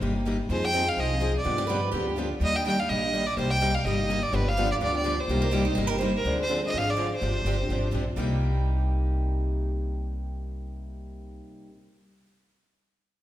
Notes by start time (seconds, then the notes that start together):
0.01 G1 C3 G3 A#3 D#4 G4
0.15 A#3 D#4 G4
0.26 C3 G3 A#3 D#4 G4
0.49 F2 F3 C4 D#4 G#4 C5
0.64 G5
0.75 F3 C4 D#4 G#4
0.88 F5
0.97 C2 F3 C4 D#4 G#4 D#5
1.11 C4 D#4 G#4
1.20 F3 C4 D#4 G#4
1.38 D5
1.45 G2 D3 F3 B3 D4 G4
1.58 G4
1.67 D3 F3 B3 D4 G4 B4
1.92 D2 D3 F3 B3 D4 G4
2.08 B3 D4 G4
2.16 D3 F3 B3 D4 F4 G4
2.40 D#2 D#3 G3 A#3 D4 G4 D#5
2.56 G5
2.67 D#3 G3 A#3 D4 G4 G5
2.80 F5
2.89 A#1 D#3 G3 A#3 D4 G4 D#5
3.03 A#3 D4 G4
3.13 D#3 G3 A#3 D4 G4
3.27 D5
3.37 C2 C3 G3 A#3 D#4 G4 C5
3.51 G5
3.61 C3 G3 A#3 D#4 G4
3.74 F5
3.85 G1 C3 G3 A#3 D#4 G4 D#5
3.99 A#3 D#4 G4
4.09 C3 G3 A#3 D#4 G4
4.23 D5
4.32 G1 D3 F3 B3 D4 G4 B4
4.49 F5
4.58 D3 F3 B3 D4 G4
4.72 D5
4.80 D2 D3 F3 B3 D4 G4 D5
4.94 B3 D4 G4 D5
5.05 D3 F3 B3 D4 G4
5.20 C5
5.28 C2 C3 G3 A#3 D#4 G4
5.42 A#4
5.52 C3 G3 A#3 D#4 G4
5.65 D#4
5.75 G1 C3 G3 A#3 D#4 G4
5.87 G4 A#4
5.91 A#3 D#4
5.98 C3 G3 A#3 D#4 C5
6.03 G4
6.16 A#4
6.25 D2 D3 F3 C4 D4 G#4
6.42 C5
6.50 D3 F3 C4 D4 G#4
6.62 C4 D4 G#4
6.67 D#5
6.73 G#1 D3 F3 C4 D4 G#4
6.78 F5
6.90 D5
6.97 D3 F3 C4 D4 G#4
7.15 C5
7.21 G1 C3 F3 C4 D4 G4
7.45 G1 C3 F3 C4 D4 G4
7.60 C4 D4 G4
7.69 G#1 C3 F3 C4 D4 G4
7.92 A#1 C3 F3 C4 D4 G4
8.16 C2 C3 G3 A#3 D#4 G4